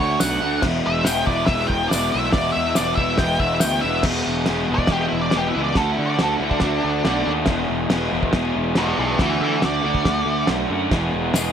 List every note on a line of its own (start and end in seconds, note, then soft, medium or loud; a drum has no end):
0.00 0.15 D2 loud
0.00 0.19 D3 loud
0.00 0.20 A3 loud
0.00 0.21 D4 loud
0.00 0.21 F#4 loud
0.00 0.20 C#5 medium
0.20 0.37 B1 medium
0.20 0.40 D3 medium
0.20 0.40 A3 medium
0.20 0.41 D4 medium
0.20 0.42 F#4 medium
0.20 0.61 F#5 medium
0.20 snare loud
0.20 open hi-hat medium
0.20 tambourine loud
0.41 0.58 D2 medium
0.41 0.61 D3 medium
0.41 0.61 A3 medium
0.41 0.62 D4 loud
0.41 0.62 F#4 loud
0.62 0.80 E1 loud
0.62 1.06 E2 loud
0.62 1.05 B2 medium
0.62 1.08 E3 loud
0.62 1.08 G#3 loud
0.62 1.09 B3 loud
0.62 1.10 E4 loud
0.62 kick loud
0.62 snare loud
0.62 crash loud
0.87 1.02 E1 medium
0.87 1.06 E5 loud
1.04 1.22 E1 medium
1.04 1.28 E2 medium
1.04 1.28 B2 medium
1.04 1.30 E3 medium
1.04 1.25 G5 medium
1.04 snare loud
1.04 open hi-hat medium
1.04 tambourine loud
1.08 1.31 G#3 medium
1.08 1.31 B3 loud
1.08 1.31 E4 loud
1.27 1.44 E1 loud
1.27 1.51 E2 medium
1.27 1.50 B2 medium
1.27 1.52 E3 loud
1.27 1.46 D5 medium
1.27 kick medium
1.31 1.53 G#3 medium
1.31 1.54 B3 loud
1.31 1.55 E4 loud
1.46 1.65 E1 loud
1.46 1.67 E5 loud
1.46 kick loud
1.46 snare loud
1.46 open hi-hat medium
1.51 1.91 E2 loud
1.51 1.91 B2 loud
1.51 1.92 E3 loud
1.51 1.94 G#3 loud
1.51 1.94 B3 loud
1.51 1.95 E4 loud
1.67 1.86 E1 loud
1.67 1.88 G5 medium
1.67 kick medium
1.89 2.12 E2 medium
1.89 2.12 B2 medium
1.89 2.14 E3 medium
1.89 2.10 D5 loud
1.89 snare loud
1.89 open hi-hat medium
1.89 tambourine medium
1.93 2.08 E1 medium
1.93 2.14 G#3 medium
1.93 2.15 B3 medium
1.93 2.16 E4 medium
2.12 2.30 B1 loud
2.12 2.34 E2 medium
2.12 2.32 B2 medium
2.12 2.37 E3 medium
2.12 2.36 G#3 medium
2.12 2.37 B3 loud
2.12 2.32 E5 medium
2.17 2.37 E4 medium
2.32 2.50 E1 loud
2.32 2.75 E2 loud
2.32 2.76 B2 loud
2.32 2.77 G#3 loud
2.32 2.52 D5 medium
2.32 kick loud
2.32 snare loud
2.32 open hi-hat medium
2.37 2.76 E3 loud
2.37 2.78 B3 loud
2.37 2.79 E4 loud
2.52 2.74 E5 medium
2.56 2.72 E2 medium
2.75 2.93 E1 medium
2.75 2.95 E2 medium
2.75 2.97 B2 medium
2.75 2.97 E3 medium
2.75 2.97 G#3 medium
2.75 2.98 B3 medium
2.75 2.95 D5 loud
2.75 snare loud
2.75 open hi-hat medium
2.75 tambourine medium
2.80 2.99 E4 medium
2.96 3.14 E1 medium
2.96 3.18 E2 medium
2.96 3.19 B2 medium
2.96 3.21 E3 medium
2.96 3.21 G#3 medium
2.96 3.21 B3 medium
2.96 3.17 E5 loud
2.96 kick medium
3.00 3.22 E4 medium
3.18 3.35 E1 loud
3.18 3.61 E2 loud
3.18 3.62 B2 loud
3.18 3.39 G5 loud
3.18 kick loud
3.18 snare loud
3.18 open hi-hat medium
3.22 3.62 E3 loud
3.22 3.64 G#3 loud
3.22 3.64 B3 loud
3.22 3.65 E4 loud
3.40 3.57 E1 loud
3.40 3.60 E5 loud
3.40 kick medium
3.60 3.79 D2 medium
3.60 3.83 E2 medium
3.60 3.83 B2 medium
3.60 3.84 E3 medium
3.60 3.81 G5 medium
3.60 snare loud
3.60 open hi-hat medium
3.60 tambourine medium
3.65 3.85 G#3 medium
3.65 3.86 B3 medium
3.65 3.86 E4 medium
3.81 4.04 E1 medium
3.81 4.02 E2 medium
3.81 4.03 B2 medium
3.81 4.02 E5 loud
3.85 4.04 E3 medium
3.85 4.04 G#3 medium
3.85 4.05 B3 medium
3.85 4.05 E4 loud
4.03 4.21 E1 loud
4.03 4.45 E2 loud
4.03 4.47 B2 loud
4.03 4.46 E3 loud
4.03 4.47 G#3 loud
4.03 4.48 B3 loud
4.03 kick loud
4.03 snare loud
4.03 crash loud
4.03 crash medium
4.08 4.48 G#4 loud
4.27 4.43 E1 medium
4.46 4.64 E1 medium
4.46 4.67 E2 medium
4.46 4.68 B2 medium
4.46 4.69 E3 medium
4.46 4.70 G#3 medium
4.46 4.70 B3 loud
4.46 4.70 G#4 loud
4.46 snare loud
4.46 crash medium
4.68 4.86 E1 medium
4.68 4.88 E2 medium
4.68 4.89 B2 medium
4.68 4.90 E3 medium
4.68 4.90 G#3 medium
4.68 4.91 B3 medium
4.68 4.91 G#4 medium
4.75 4.89 D5 loud
4.75 kick medium
4.87 5.06 E1 medium
4.87 5.32 E2 medium
4.87 5.33 B2 loud
4.87 5.34 E3 loud
4.87 kick loud
4.87 snare loud
4.87 crash medium
4.91 5.35 G#3 loud
4.91 5.35 B3 loud
4.91 5.04 G4 medium
4.91 5.35 G#4 loud
5.08 5.20 E4 medium
5.12 5.28 E1 loud
5.21 5.33 D5 medium
5.31 5.50 E1 medium
5.31 5.53 E2 medium
5.31 5.53 B2 medium
5.31 5.54 E3 medium
5.31 snare loud
5.31 crash medium
5.36 5.55 G#3 medium
5.36 5.55 B3 medium
5.36 5.48 G4 medium
5.36 5.56 G#4 medium
5.48 5.61 E4 medium
5.54 5.71 C#2 medium
5.54 5.74 E2 medium
5.54 5.74 B2 loud
5.54 5.74 E3 medium
5.54 5.75 G#3 medium
5.54 5.75 B3 loud
5.54 5.75 G#4 loud
5.64 5.76 D5 loud
5.75 5.92 D2 loud
5.75 6.18 D3 loud
5.75 6.19 A3 loud
5.75 6.19 D4 loud
5.75 6.20 F#4 loud
5.75 5.90 A4 loud
5.75 kick loud
5.75 snare loud
5.75 crash medium
5.92 6.04 E4 medium
5.98 6.14 D3 loud
6.06 6.18 D5 loud
6.19 6.35 D2 medium
6.19 6.38 D3 medium
6.19 6.39 A3 medium
6.19 6.41 D4 loud
6.19 6.42 F#4 medium
6.19 snare loud
6.19 crash medium
6.23 6.34 A4 medium
6.37 6.56 D2 loud
6.37 6.60 D3 medium
6.37 6.61 A3 medium
6.37 6.48 E4 loud
6.42 6.62 D4 loud
6.42 6.63 F#4 medium
6.50 7.31 D4 loud
6.50 kick medium
6.60 6.78 D2 medium
6.60 7.03 D3 loud
6.60 7.04 A3 loud
6.60 7.05 D4 loud
6.60 kick loud
6.60 snare loud
6.60 crash medium
6.64 7.06 F#4 loud
6.84 7.00 D2 loud
7.05 7.21 B1 medium
7.05 7.23 D3 medium
7.05 7.24 A3 medium
7.05 7.24 D4 medium
7.05 7.25 F#4 medium
7.05 snare loud
7.05 crash medium
7.24 7.42 D#2 medium
7.24 7.45 D3 medium
7.24 7.45 A3 loud
7.24 7.45 D4 medium
7.24 7.46 F#4 medium
7.45 7.64 E1 loud
7.45 7.88 E2 loud
7.45 7.89 B2 loud
7.45 7.90 E3 loud
7.45 7.90 G#3 loud
7.45 7.91 B3 loud
7.45 7.92 G#4 loud
7.45 kick loud
7.45 snare loud
7.45 crash medium
7.70 7.86 E1 loud
7.89 8.07 E1 medium
7.89 8.08 E2 medium
7.89 8.10 B2 medium
7.89 8.11 E3 loud
7.89 8.11 G#3 medium
7.89 8.12 B3 loud
7.89 8.12 G#4 medium
7.89 snare loud
7.89 crash medium
8.10 8.28 E1 medium
8.10 8.30 E2 medium
8.10 8.31 B2 medium
8.10 8.31 E3 medium
8.10 8.32 G#3 medium
8.10 8.33 B3 medium
8.10 8.34 G#4 medium
8.23 kick medium
8.31 8.50 E1 medium
8.31 8.74 E2 medium
8.31 8.76 B2 loud
8.31 8.76 E3 loud
8.31 8.77 G#3 loud
8.31 8.78 B3 loud
8.31 8.78 G#4 loud
8.31 kick loud
8.31 snare loud
8.31 crash medium
8.56 8.72 E1 loud
8.75 8.93 E1 loud
8.75 8.94 E2 medium
8.75 8.96 B2 medium
8.75 8.96 E3 medium
8.75 8.96 G#3 medium
8.75 8.97 B3 medium
8.75 8.98 B4 medium
8.75 8.98 D5 medium
8.75 snare loud
8.75 crash medium
8.79 8.98 G#4 medium
8.95 9.14 B1 medium
8.95 9.16 E2 medium
8.95 9.17 B2 medium
8.95 9.17 E3 medium
8.95 9.18 G#3 medium
8.95 9.18 B3 medium
8.99 9.18 G#4 medium
8.99 9.18 B4 medium
8.99 9.19 D5 medium
9.17 9.36 D2 loud
9.17 9.60 D3 loud
9.17 9.61 A3 loud
9.17 9.61 D4 loud
9.17 9.62 F#4 loud
9.17 kick loud
9.17 snare loud
9.17 crash medium
9.21 9.40 B4 medium
9.21 9.41 E5 medium
9.41 9.57 D3 loud
9.41 9.62 B4 medium
9.41 9.63 E5 medium
9.61 9.80 D2 medium
9.61 9.81 D3 medium
9.61 9.81 A3 medium
9.61 9.82 D4 medium
9.61 9.83 F#4 loud
9.61 snare loud
9.61 crash medium
9.65 10.47 D5 loud
9.82 10.00 D2 loud
9.82 10.02 D3 medium
9.82 10.02 A3 medium
9.82 10.03 D4 loud
9.82 10.05 F#4 loud
9.95 kick medium
10.03 10.22 D2 medium
10.03 10.47 D3 loud
10.03 10.48 A3 loud
10.03 10.49 D4 loud
10.03 10.49 F#4 loud
10.03 kick loud
10.03 snare loud
10.03 crash medium
10.26 10.42 D2 loud
10.47 10.65 B1 medium
10.47 10.68 D3 medium
10.47 10.69 A3 medium
10.47 10.71 D4 medium
10.47 10.71 F#4 medium
10.47 snare loud
10.47 crash medium
10.69 10.86 F#2 medium
10.69 10.89 D3 medium
10.69 10.90 A3 medium
10.69 10.91 D4 medium
10.69 10.91 F#4 medium
10.90 11.08 E1 loud
10.90 11.31 E2 loud
10.90 11.32 B2 medium
10.90 11.33 E3 loud
10.90 11.34 G#3 loud
10.90 11.34 B3 loud
10.90 kick loud
10.90 snare loud
10.90 crash medium
10.94 11.35 G#4 loud
11.14 11.30 E1 loud
11.32 11.51 E1 medium
11.32 11.52 E2 medium
11.32 11.52 B2 medium
11.32 11.52 E3 loud
11.32 11.52 G#3 medium
11.32 11.52 B3 medium
11.32 11.52 G#4 medium
11.32 snare loud
11.32 tambourine medium
11.32 crash medium